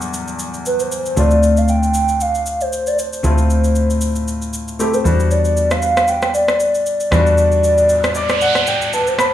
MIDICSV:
0, 0, Header, 1, 6, 480
1, 0, Start_track
1, 0, Tempo, 517241
1, 1085, Time_signature, 4, 2, 24, 8
1, 8665, End_track
2, 0, Start_track
2, 0, Title_t, "Soft synth lead"
2, 0, Program_c, 0, 80
2, 616, Note_on_c, 0, 71, 90
2, 745, Note_on_c, 0, 72, 95
2, 759, Note_off_c, 0, 71, 0
2, 1094, Note_on_c, 0, 74, 101
2, 1108, Note_off_c, 0, 72, 0
2, 1463, Note_on_c, 0, 77, 93
2, 1477, Note_off_c, 0, 74, 0
2, 1568, Note_off_c, 0, 77, 0
2, 1573, Note_on_c, 0, 79, 106
2, 1692, Note_off_c, 0, 79, 0
2, 1706, Note_on_c, 0, 79, 104
2, 2054, Note_on_c, 0, 77, 101
2, 2068, Note_off_c, 0, 79, 0
2, 2424, Note_on_c, 0, 72, 90
2, 2438, Note_off_c, 0, 77, 0
2, 2664, Note_on_c, 0, 74, 89
2, 2678, Note_off_c, 0, 72, 0
2, 2771, Note_on_c, 0, 72, 95
2, 2785, Note_off_c, 0, 74, 0
2, 4208, Note_off_c, 0, 72, 0
2, 4450, Note_on_c, 0, 69, 90
2, 4580, Note_on_c, 0, 72, 98
2, 4594, Note_off_c, 0, 69, 0
2, 4928, Note_on_c, 0, 74, 103
2, 4942, Note_off_c, 0, 72, 0
2, 5299, Note_on_c, 0, 77, 107
2, 5313, Note_off_c, 0, 74, 0
2, 5647, Note_on_c, 0, 79, 104
2, 5661, Note_off_c, 0, 77, 0
2, 5880, Note_off_c, 0, 79, 0
2, 5886, Note_on_c, 0, 74, 104
2, 8248, Note_off_c, 0, 74, 0
2, 8293, Note_on_c, 0, 71, 91
2, 8424, Note_on_c, 0, 72, 96
2, 8438, Note_off_c, 0, 71, 0
2, 8665, Note_off_c, 0, 72, 0
2, 8665, End_track
3, 0, Start_track
3, 0, Title_t, "Grand piano"
3, 0, Program_c, 1, 0
3, 0, Control_c, 1, 64, 127
3, 0, Note_on_c, 1, 40, 76
3, 0, Note_on_c, 1, 54, 56
3, 0, Note_on_c, 1, 55, 69
3, 0, Note_on_c, 1, 59, 71
3, 0, Note_on_c, 1, 62, 68
3, 0, Note_on_c, 1, 69, 80
3, 805, Note_off_c, 1, 40, 0
3, 812, Note_off_c, 1, 59, 0
3, 814, Note_off_c, 1, 62, 0
3, 817, Note_off_c, 1, 69, 0
3, 837, Note_off_c, 1, 55, 0
3, 1079, Note_on_c, 1, 57, 65
3, 1088, Note_on_c, 1, 60, 61
3, 1095, Note_on_c, 1, 62, 58
3, 1098, Control_c, 1, 64, 0
3, 1103, Note_on_c, 1, 65, 69
3, 1104, Note_off_c, 1, 54, 0
3, 1264, Control_c, 1, 64, 127
3, 2965, Note_off_c, 1, 57, 0
3, 2969, Note_off_c, 1, 60, 0
3, 2973, Note_off_c, 1, 62, 0
3, 2977, Note_off_c, 1, 65, 0
3, 2998, Note_on_c, 1, 57, 62
3, 3007, Note_on_c, 1, 60, 58
3, 3015, Note_on_c, 1, 64, 58
3, 3023, Note_on_c, 1, 65, 72
3, 4413, Note_off_c, 1, 57, 0
3, 4417, Note_off_c, 1, 60, 0
3, 4421, Note_off_c, 1, 64, 0
3, 4425, Note_off_c, 1, 65, 0
3, 4446, Note_on_c, 1, 57, 50
3, 4450, Note_on_c, 1, 60, 44
3, 4454, Note_on_c, 1, 64, 45
3, 4458, Note_on_c, 1, 67, 52
3, 4679, Note_on_c, 1, 55, 66
3, 4685, Note_off_c, 1, 57, 0
3, 4687, Note_on_c, 1, 59, 58
3, 4688, Note_off_c, 1, 60, 0
3, 4689, Note_off_c, 1, 64, 0
3, 4692, Note_off_c, 1, 67, 0
3, 4694, Note_on_c, 1, 62, 57
3, 4697, Control_c, 1, 64, 0
3, 4704, Note_on_c, 1, 66, 73
3, 4877, Control_c, 1, 64, 127
3, 6565, Note_off_c, 1, 55, 0
3, 6569, Note_off_c, 1, 59, 0
3, 6572, Note_off_c, 1, 62, 0
3, 6577, Note_off_c, 1, 66, 0
3, 6601, Note_on_c, 1, 55, 76
3, 6609, Note_on_c, 1, 59, 69
3, 6617, Note_on_c, 1, 62, 73
3, 6625, Note_on_c, 1, 66, 82
3, 7572, Note_on_c, 1, 74, 71
3, 7792, Note_off_c, 1, 74, 0
3, 7813, Note_on_c, 1, 78, 75
3, 8032, Note_off_c, 1, 78, 0
3, 8053, Note_on_c, 1, 79, 74
3, 8272, Note_off_c, 1, 79, 0
3, 8292, Note_on_c, 1, 81, 73
3, 8486, Note_off_c, 1, 55, 0
3, 8490, Note_off_c, 1, 59, 0
3, 8494, Note_off_c, 1, 62, 0
3, 8498, Note_off_c, 1, 66, 0
3, 8512, Note_off_c, 1, 81, 0
3, 8532, Note_on_c, 1, 83, 68
3, 8665, Note_off_c, 1, 83, 0
3, 8665, End_track
4, 0, Start_track
4, 0, Title_t, "Fingered electric bass"
4, 0, Program_c, 2, 33
4, 1086, Note_on_c, 2, 38, 80
4, 2968, Note_off_c, 2, 38, 0
4, 3006, Note_on_c, 2, 38, 80
4, 4652, Note_off_c, 2, 38, 0
4, 4687, Note_on_c, 2, 40, 81
4, 6569, Note_off_c, 2, 40, 0
4, 6605, Note_on_c, 2, 40, 81
4, 8488, Note_off_c, 2, 40, 0
4, 8665, End_track
5, 0, Start_track
5, 0, Title_t, "Noise sweep"
5, 0, Program_c, 3, 103
5, 6847, Note_on_c, 3, 60, 84
5, 8665, Note_off_c, 3, 60, 0
5, 8665, End_track
6, 0, Start_track
6, 0, Title_t, "Drums"
6, 14, Note_on_c, 9, 82, 47
6, 107, Note_off_c, 9, 82, 0
6, 127, Note_on_c, 9, 82, 74
6, 220, Note_off_c, 9, 82, 0
6, 257, Note_on_c, 9, 82, 41
6, 350, Note_off_c, 9, 82, 0
6, 363, Note_on_c, 9, 82, 83
6, 456, Note_off_c, 9, 82, 0
6, 500, Note_on_c, 9, 82, 46
6, 593, Note_off_c, 9, 82, 0
6, 610, Note_on_c, 9, 82, 78
6, 703, Note_off_c, 9, 82, 0
6, 739, Note_on_c, 9, 82, 58
6, 831, Note_off_c, 9, 82, 0
6, 852, Note_on_c, 9, 82, 86
6, 944, Note_off_c, 9, 82, 0
6, 983, Note_on_c, 9, 82, 57
6, 1076, Note_off_c, 9, 82, 0
6, 1086, Note_on_c, 9, 82, 74
6, 1179, Note_off_c, 9, 82, 0
6, 1215, Note_on_c, 9, 82, 52
6, 1307, Note_off_c, 9, 82, 0
6, 1328, Note_on_c, 9, 82, 77
6, 1421, Note_off_c, 9, 82, 0
6, 1457, Note_on_c, 9, 82, 54
6, 1549, Note_off_c, 9, 82, 0
6, 1562, Note_on_c, 9, 82, 66
6, 1655, Note_off_c, 9, 82, 0
6, 1700, Note_on_c, 9, 82, 57
6, 1792, Note_off_c, 9, 82, 0
6, 1800, Note_on_c, 9, 82, 92
6, 1893, Note_off_c, 9, 82, 0
6, 1935, Note_on_c, 9, 82, 50
6, 2028, Note_off_c, 9, 82, 0
6, 2047, Note_on_c, 9, 82, 79
6, 2140, Note_off_c, 9, 82, 0
6, 2178, Note_on_c, 9, 82, 44
6, 2271, Note_off_c, 9, 82, 0
6, 2285, Note_on_c, 9, 82, 87
6, 2377, Note_off_c, 9, 82, 0
6, 2421, Note_on_c, 9, 82, 50
6, 2513, Note_off_c, 9, 82, 0
6, 2531, Note_on_c, 9, 82, 78
6, 2624, Note_off_c, 9, 82, 0
6, 2660, Note_on_c, 9, 82, 55
6, 2753, Note_off_c, 9, 82, 0
6, 2773, Note_on_c, 9, 82, 86
6, 2866, Note_off_c, 9, 82, 0
6, 2904, Note_on_c, 9, 82, 55
6, 2997, Note_off_c, 9, 82, 0
6, 3008, Note_on_c, 9, 82, 72
6, 3100, Note_off_c, 9, 82, 0
6, 3137, Note_on_c, 9, 82, 52
6, 3230, Note_off_c, 9, 82, 0
6, 3250, Note_on_c, 9, 82, 77
6, 3343, Note_off_c, 9, 82, 0
6, 3379, Note_on_c, 9, 82, 57
6, 3472, Note_off_c, 9, 82, 0
6, 3484, Note_on_c, 9, 82, 65
6, 3577, Note_off_c, 9, 82, 0
6, 3622, Note_on_c, 9, 82, 56
6, 3715, Note_off_c, 9, 82, 0
6, 3722, Note_on_c, 9, 82, 93
6, 3815, Note_off_c, 9, 82, 0
6, 3857, Note_on_c, 9, 82, 51
6, 3950, Note_off_c, 9, 82, 0
6, 3970, Note_on_c, 9, 82, 74
6, 4063, Note_off_c, 9, 82, 0
6, 4100, Note_on_c, 9, 82, 42
6, 4193, Note_off_c, 9, 82, 0
6, 4207, Note_on_c, 9, 82, 87
6, 4300, Note_off_c, 9, 82, 0
6, 4344, Note_on_c, 9, 82, 48
6, 4436, Note_off_c, 9, 82, 0
6, 4453, Note_on_c, 9, 82, 82
6, 4546, Note_off_c, 9, 82, 0
6, 4581, Note_on_c, 9, 82, 55
6, 4674, Note_off_c, 9, 82, 0
6, 4693, Note_on_c, 9, 82, 89
6, 4786, Note_off_c, 9, 82, 0
6, 4825, Note_on_c, 9, 82, 55
6, 4918, Note_off_c, 9, 82, 0
6, 4927, Note_on_c, 9, 82, 68
6, 5020, Note_off_c, 9, 82, 0
6, 5056, Note_on_c, 9, 82, 50
6, 5148, Note_off_c, 9, 82, 0
6, 5168, Note_on_c, 9, 82, 80
6, 5261, Note_off_c, 9, 82, 0
6, 5297, Note_on_c, 9, 82, 56
6, 5301, Note_on_c, 9, 37, 76
6, 5390, Note_off_c, 9, 82, 0
6, 5394, Note_off_c, 9, 37, 0
6, 5403, Note_on_c, 9, 82, 68
6, 5496, Note_off_c, 9, 82, 0
6, 5540, Note_on_c, 9, 82, 58
6, 5541, Note_on_c, 9, 37, 93
6, 5633, Note_off_c, 9, 82, 0
6, 5634, Note_off_c, 9, 37, 0
6, 5640, Note_on_c, 9, 82, 90
6, 5733, Note_off_c, 9, 82, 0
6, 5774, Note_on_c, 9, 82, 50
6, 5777, Note_on_c, 9, 37, 83
6, 5867, Note_off_c, 9, 82, 0
6, 5870, Note_off_c, 9, 37, 0
6, 5887, Note_on_c, 9, 82, 76
6, 5980, Note_off_c, 9, 82, 0
6, 6017, Note_on_c, 9, 37, 87
6, 6018, Note_on_c, 9, 82, 44
6, 6110, Note_off_c, 9, 37, 0
6, 6110, Note_off_c, 9, 82, 0
6, 6124, Note_on_c, 9, 82, 82
6, 6217, Note_off_c, 9, 82, 0
6, 6260, Note_on_c, 9, 82, 48
6, 6353, Note_off_c, 9, 82, 0
6, 6369, Note_on_c, 9, 82, 83
6, 6462, Note_off_c, 9, 82, 0
6, 6498, Note_on_c, 9, 82, 55
6, 6591, Note_off_c, 9, 82, 0
6, 6605, Note_on_c, 9, 37, 98
6, 6611, Note_on_c, 9, 82, 85
6, 6698, Note_off_c, 9, 37, 0
6, 6704, Note_off_c, 9, 82, 0
6, 6743, Note_on_c, 9, 82, 53
6, 6836, Note_off_c, 9, 82, 0
6, 6846, Note_on_c, 9, 82, 73
6, 6939, Note_off_c, 9, 82, 0
6, 6976, Note_on_c, 9, 82, 49
6, 7069, Note_off_c, 9, 82, 0
6, 7088, Note_on_c, 9, 82, 82
6, 7181, Note_off_c, 9, 82, 0
6, 7218, Note_on_c, 9, 82, 57
6, 7311, Note_off_c, 9, 82, 0
6, 7323, Note_on_c, 9, 82, 66
6, 7416, Note_off_c, 9, 82, 0
6, 7460, Note_on_c, 9, 82, 55
6, 7461, Note_on_c, 9, 37, 94
6, 7553, Note_off_c, 9, 82, 0
6, 7554, Note_off_c, 9, 37, 0
6, 7561, Note_on_c, 9, 82, 90
6, 7653, Note_off_c, 9, 82, 0
6, 7695, Note_on_c, 9, 82, 50
6, 7698, Note_on_c, 9, 37, 83
6, 7788, Note_off_c, 9, 82, 0
6, 7791, Note_off_c, 9, 37, 0
6, 7807, Note_on_c, 9, 82, 73
6, 7900, Note_off_c, 9, 82, 0
6, 7937, Note_on_c, 9, 37, 85
6, 7937, Note_on_c, 9, 82, 42
6, 8030, Note_off_c, 9, 37, 0
6, 8030, Note_off_c, 9, 82, 0
6, 8044, Note_on_c, 9, 82, 84
6, 8137, Note_off_c, 9, 82, 0
6, 8182, Note_on_c, 9, 82, 48
6, 8274, Note_off_c, 9, 82, 0
6, 8289, Note_on_c, 9, 82, 80
6, 8382, Note_off_c, 9, 82, 0
6, 8418, Note_on_c, 9, 82, 56
6, 8510, Note_off_c, 9, 82, 0
6, 8524, Note_on_c, 9, 37, 101
6, 8530, Note_on_c, 9, 82, 87
6, 8617, Note_off_c, 9, 37, 0
6, 8623, Note_off_c, 9, 82, 0
6, 8665, End_track
0, 0, End_of_file